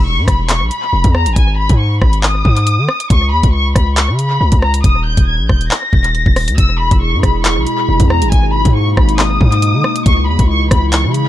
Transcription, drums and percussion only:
0.28 kick loud
0.28 cross-stick loud
0.28 closed hi-hat medium
0.49 clap loud
0.49 closed hi-hat medium
0.71 closed hi-hat medium
1.04 kick loud
1.04 closed hi-hat medium
1.15 cross-stick medium
1.26 closed hi-hat medium
1.36 kick loud
1.36 closed hi-hat medium
1.69 kick loud
1.69 closed hi-hat medium
2.02 kick loud
2.02 cross-stick medium
2.13 closed hi-hat medium
2.23 clap loud
2.45 kick loud
2.57 closed hi-hat medium
2.67 closed hi-hat medium
2.89 cross-stick medium
3.00 closed hi-hat medium
3.10 kick loud
3.10 closed hi-hat loud
3.43 kick loud
3.43 closed hi-hat medium
3.75 kick loud
3.75 cross-stick medium
3.75 closed hi-hat medium
3.97 clap loud
3.97 closed hi-hat medium
4.19 closed hi-hat medium
4.52 kick loud
4.52 closed hi-hat medium
4.62 cross-stick medium
4.74 closed hi-hat medium
4.84 kick loud
4.84 closed hi-hat loud
5.17 kick loud
5.17 closed hi-hat medium
5.49 kick loud
5.49 cross-stick medium
5.61 closed hi-hat medium
5.71 clap loud
5.93 kick loud
6.04 closed hi-hat medium
6.15 closed hi-hat soft
6.26 kick loud
6.36 cross-stick medium
6.36 open hi-hat medium
6.48 closed hi-hat medium
6.58 kick loud
6.58 closed hi-hat loud
6.91 kick loud
6.91 closed hi-hat medium
7.23 kick loud
7.23 cross-stick medium
7.23 closed hi-hat medium
7.45 clap loud
7.45 closed hi-hat medium
7.67 closed hi-hat medium
8.00 kick loud
8.00 closed hi-hat medium
8.10 cross-stick medium
8.22 closed hi-hat medium
8.32 kick loud
8.32 closed hi-hat medium
8.65 kick loud
8.65 closed hi-hat medium
8.97 kick loud
8.97 cross-stick loud
9.09 closed hi-hat medium
9.19 clap loud
9.41 kick loud
9.52 closed hi-hat medium
9.62 closed hi-hat medium
9.84 cross-stick medium
9.96 closed hi-hat medium
10.06 kick loud
10.06 closed hi-hat loud
10.39 kick loud
10.39 closed hi-hat medium
10.71 kick loud
10.71 cross-stick medium
10.71 closed hi-hat medium
10.93 clap loud
10.93 closed hi-hat medium
11.14 closed hi-hat medium

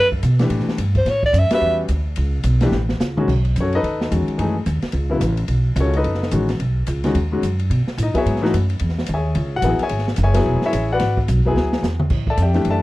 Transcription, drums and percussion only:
0.12 kick medium
0.23 hi-hat pedal soft
0.23 ride medium
0.39 snare medium
0.39 ride soft
0.50 ride medium
0.60 snare soft
0.69 snare soft
0.78 hi-hat pedal medium
0.78 ride medium
0.95 kick medium
0.95 ride soft
1.06 snare soft
1.06 ride medium
1.23 kick medium
1.34 hi-hat pedal medium
1.34 ride medium
1.51 snare medium
1.51 ride medium
1.88 hi-hat pedal medium
1.88 ride medium
2.16 ride medium
2.43 hi-hat pedal medium
2.43 ride medium
2.60 snare medium
2.60 ride medium
2.72 snare medium
2.89 snare medium
3.00 snare medium
3.00 hi-hat pedal medium
3.17 mid tom medium
3.28 kick medium
3.28 crash medium
3.45 ride soft
3.56 hi-hat pedal medium
3.56 ride medium
3.73 ride soft
3.84 ride medium
4.01 snare medium
4.12 hi-hat pedal medium
4.12 ride medium
4.28 ride soft
4.39 ride medium
4.66 hi-hat pedal soft
4.66 ride medium
4.82 snare soft
4.82 ride soft
4.92 ride medium
5.21 hi-hat pedal medium
5.21 ride medium
5.37 ride medium
5.48 ride medium
5.76 hi-hat pedal medium
5.76 ride medium
5.93 ride soft
6.04 ride medium
6.15 snare soft
6.23 snare soft
6.31 hi-hat pedal medium
6.31 ride medium
6.49 snare soft
6.49 ride soft
6.60 ride medium
6.86 hi-hat pedal medium
6.86 ride medium
7.04 snare soft
7.04 ride soft
7.15 ride medium
7.43 hi-hat pedal medium
7.43 ride medium
7.59 ride soft
7.71 ride medium
7.87 snare soft
7.98 hi-hat pedal medium
7.98 ride medium
8.15 kick soft
8.15 ride soft
8.26 ride medium
8.36 snare soft
8.45 snare soft
8.54 hi-hat pedal soft
8.54 ride medium
8.70 ride medium
8.79 ride medium
8.89 snare soft
8.99 snare soft
9.06 hi-hat pedal medium
9.06 ride medium
9.35 ride medium
9.62 hi-hat pedal medium
9.62 ride medium
9.79 ride medium
9.89 ride medium
9.99 snare soft
10.08 snare soft
10.16 hi-hat pedal medium
10.16 ride medium
10.34 snare soft
10.34 ride medium
10.62 snare soft
10.73 hi-hat pedal medium
10.73 ride medium
10.99 snare soft
10.99 ride medium
11.17 kick medium
11.28 hi-hat pedal medium
11.28 ride medium
11.57 snare medium
11.73 snare medium
11.83 snare medium
11.83 hi-hat pedal soft
11.99 mid tom medium
12.10 kick medium
12.10 crash medium
12.27 kick medium
12.37 hi-hat pedal medium
12.37 ride medium
12.54 snare soft
12.54 ride soft
12.65 ride medium

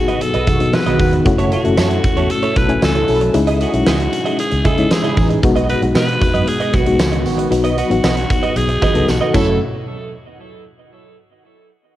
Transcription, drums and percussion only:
0.08 closed hi-hat soft
0.21 closed hi-hat medium
0.21 tambourine soft
0.34 closed hi-hat soft
0.47 kick medium
0.47 closed hi-hat medium
0.47 tambourine soft
0.60 closed hi-hat medium
0.73 snare loud
0.73 tambourine medium
0.86 closed hi-hat soft
0.99 kick medium
0.99 open hi-hat medium
0.99 tambourine soft
1.13 closed hi-hat medium
1.25 kick loud
1.25 closed hi-hat medium
1.25 tambourine soft
1.39 closed hi-hat medium
1.52 closed hi-hat medium
1.52 tambourine soft
1.65 closed hi-hat soft
1.77 snare loud
1.77 tambourine medium
1.91 closed hi-hat medium
2.04 kick loud
2.04 closed hi-hat medium
2.04 tambourine soft
2.17 closed hi-hat soft
2.30 closed hi-hat medium
2.30 tambourine soft
2.43 closed hi-hat medium
2.56 kick medium
2.56 closed hi-hat medium
2.56 tambourine soft
2.69 closed hi-hat medium
2.82 snare loud
2.82 tambourine medium
2.95 closed hi-hat soft
3.08 open hi-hat medium
3.08 tambourine soft
3.21 closed hi-hat medium
3.34 closed hi-hat medium
3.34 tambourine soft
3.47 closed hi-hat medium
3.61 closed hi-hat medium
3.74 closed hi-hat soft
3.86 snare loud
3.86 tambourine medium
4.00 closed hi-hat medium
4.13 closed hi-hat medium
4.13 tambourine soft
4.26 closed hi-hat soft
4.39 closed hi-hat medium
4.39 tambourine soft
4.52 closed hi-hat medium
4.65 kick medium
4.65 closed hi-hat medium
4.65 tambourine soft
4.78 closed hi-hat medium
4.91 snare loud
4.91 tambourine medium
5.04 closed hi-hat soft
5.17 kick medium
5.17 open hi-hat medium
5.17 tambourine soft
5.30 closed hi-hat medium
5.43 kick loud
5.43 closed hi-hat medium
5.43 tambourine soft
5.56 closed hi-hat medium
5.69 closed hi-hat medium
5.69 tambourine soft
5.82 closed hi-hat soft
5.95 snare loud
5.95 tambourine medium
6.09 closed hi-hat medium
6.21 kick loud
6.21 closed hi-hat medium
6.21 tambourine medium
6.35 closed hi-hat soft
6.47 closed hi-hat medium
6.47 tambourine soft
6.60 closed hi-hat soft
6.74 kick medium
6.74 closed hi-hat medium
6.74 tambourine soft
6.87 closed hi-hat medium
6.99 snare loud
6.99 tambourine medium
7.13 closed hi-hat soft
7.26 open hi-hat medium
7.26 tambourine soft
7.39 closed hi-hat medium
7.52 closed hi-hat medium
7.52 tambourine soft
7.65 closed hi-hat medium
7.78 closed hi-hat medium
7.78 tambourine soft
7.91 closed hi-hat soft
8.04 snare loud
8.04 tambourine medium
8.17 closed hi-hat medium
8.30 kick loud
8.30 closed hi-hat medium
8.30 tambourine soft
8.43 closed hi-hat medium
8.56 closed hi-hat medium
8.56 tambourine soft
8.69 closed hi-hat soft
8.82 kick medium
8.82 closed hi-hat medium
8.82 tambourine soft
8.95 closed hi-hat medium
9.08 snare medium
9.08 tambourine medium
9.34 kick loud
9.34 crash medium
9.34 tambourine medium

